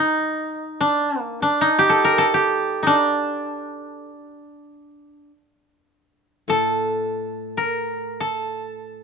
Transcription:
0.00 0.87 D#4 medium
0.81 1.22 D4 medium
1.22 1.42 A#3 medium
1.42 1.67 D4 medium
1.61 2.82 D#4 medium
1.79 2.34 G4 medium
1.90 2.10 A4 medium
2.04 2.24 A#4 medium
2.18 4.08 A4 medium
2.34 4.38 G4 medium
2.83 5.29 D4 medium
2.83 2.93 D#4 medium
6.48 9.04 A2 soft
6.48 7.63 A4 medium
7.57 8.26 A#4 medium
8.20 9.04 A4 medium

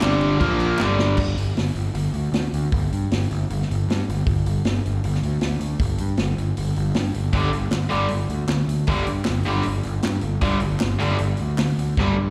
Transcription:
0.00 0.37 G1 medium
0.00 0.39 G2 loud
0.00 0.38 D3 loud
0.00 0.39 G3 loud
0.00 snare loud
0.00 clap loud
0.00 crash medium
0.11 snare soft
0.21 crash medium
0.38 0.76 A#1 loud
0.38 0.77 A#2 medium
0.38 0.77 F3 loud
0.38 0.78 A#3 loud
0.38 kick loud
0.38 crash medium
0.60 crash medium
0.78 1.15 G1 loud
0.78 1.16 G2 loud
0.78 1.17 D3 medium
0.78 1.17 G3 loud
0.78 snare medium
0.78 clap loud
0.99 snare loud
1.17 1.32 G1 medium
1.17 kick loud
1.17 crash loud
1.38 1.51 G1 medium
1.38 open hi-hat medium
1.55 1.69 G1 medium
1.55 snare loud
1.55 open hi-hat medium
1.74 1.88 G1 medium
1.74 open hi-hat medium
1.94 2.08 G1 loud
1.94 open hi-hat medium
2.13 2.27 D2 medium
2.13 open hi-hat medium
2.32 2.46 D2 medium
2.32 snare loud
2.32 open hi-hat medium
2.53 2.67 D2 medium
2.53 open hi-hat medium
2.72 2.87 G1 loud
2.72 kick loud
2.72 open hi-hat medium
2.93 3.06 G2 medium
2.93 open hi-hat medium
3.11 3.25 G1 medium
3.11 snare loud
3.11 open hi-hat medium
3.30 3.44 G1 medium
3.30 open hi-hat medium
3.50 3.64 G1 loud
3.50 open hi-hat medium
3.62 snare soft
3.70 3.84 G1 loud
3.70 open hi-hat medium
3.88 4.02 G2 medium
3.88 snare loud
3.88 open hi-hat medium
4.09 4.22 G1 loud
4.09 open hi-hat medium
4.26 4.40 G1 medium
4.26 kick loud
4.26 open hi-hat medium
4.46 4.60 G1 medium
4.46 open hi-hat medium
4.65 4.79 G1 medium
4.65 snare loud
4.65 open hi-hat medium
4.86 4.99 G1 medium
4.86 open hi-hat medium
5.04 5.18 G1 loud
5.04 open hi-hat medium
5.14 snare soft
5.23 5.37 D2 medium
5.23 open hi-hat medium
5.41 5.56 D2 medium
5.41 snare loud
5.41 open hi-hat medium
5.59 5.74 D2 medium
5.59 open hi-hat medium
5.79 5.94 G1 loud
5.79 kick loud
5.79 open hi-hat medium
5.98 6.14 G2 medium
5.98 open hi-hat medium
6.17 6.33 G1 medium
6.17 snare loud
6.17 open hi-hat medium
6.37 6.51 G1 medium
6.37 open hi-hat medium
6.57 6.71 G1 medium
6.57 open hi-hat medium
6.76 6.91 G1 medium
6.76 open hi-hat medium
6.94 7.10 G2 medium
6.94 snare loud
6.94 open hi-hat medium
7.14 7.29 G1 medium
7.14 open hi-hat medium
7.33 7.48 G1 medium
7.33 7.49 G2 medium
7.33 7.50 D3 medium
7.33 7.50 G3 medium
7.33 kick loud
7.33 open hi-hat medium
7.52 7.67 G1 medium
7.52 open hi-hat medium
7.71 7.86 G1 medium
7.71 snare loud
7.71 clap medium
7.71 open hi-hat medium
7.90 8.06 G1 medium
7.90 8.06 G2 medium
7.90 8.06 D3 medium
7.90 8.07 G3 loud
7.90 open hi-hat medium
8.08 8.25 G1 medium
8.08 open hi-hat medium
8.29 8.44 D2 medium
8.29 open hi-hat medium
8.48 8.63 D2 medium
8.48 snare loud
8.48 clap loud
8.48 open hi-hat medium
8.67 8.82 D2 medium
8.67 open hi-hat medium
8.87 9.02 G1 loud
8.87 9.03 G2 medium
8.87 9.03 D3 medium
8.87 9.04 G3 medium
8.87 kick loud
8.87 open hi-hat medium
9.07 9.22 G2 medium
9.07 open hi-hat medium
9.24 snare loud
9.24 clap loud
9.24 open hi-hat medium
9.29 9.42 G1 medium
9.43 9.61 G2 medium
9.43 9.62 D3 loud
9.43 open hi-hat medium
9.47 9.61 G1 medium
9.47 9.62 G3 loud
9.63 9.80 G1 loud
9.63 open hi-hat medium
9.83 9.99 G1 medium
9.83 open hi-hat medium
10.02 10.18 G2 medium
10.02 snare loud
10.02 clap loud
10.02 open hi-hat medium
10.21 10.36 G1 medium
10.21 open hi-hat medium
10.41 10.57 G1 loud
10.41 10.58 G2 medium
10.41 10.57 D3 medium
10.41 10.58 G3 loud
10.41 kick loud
10.41 open hi-hat medium
10.60 10.76 G1 medium
10.60 open hi-hat medium
10.80 10.96 G1 medium
10.80 snare loud
10.80 clap loud
10.80 open hi-hat medium
10.99 11.15 G1 medium
10.99 11.15 G2 medium
10.99 11.16 D3 loud
10.99 11.16 G3 loud
10.99 open hi-hat medium
11.19 11.34 G1 loud
11.19 open hi-hat medium
11.37 11.54 D2 medium
11.37 open hi-hat medium
11.58 11.72 D2 medium
11.58 snare loud
11.58 clap loud
11.58 open hi-hat medium
11.78 11.92 D2 medium
11.78 open hi-hat medium
11.97 12.12 G1 medium
11.97 12.13 G2 medium
11.97 12.14 D3 medium
11.97 12.14 G3 loud
11.97 kick loud
11.97 snare medium
12.17 12.30 G2 medium

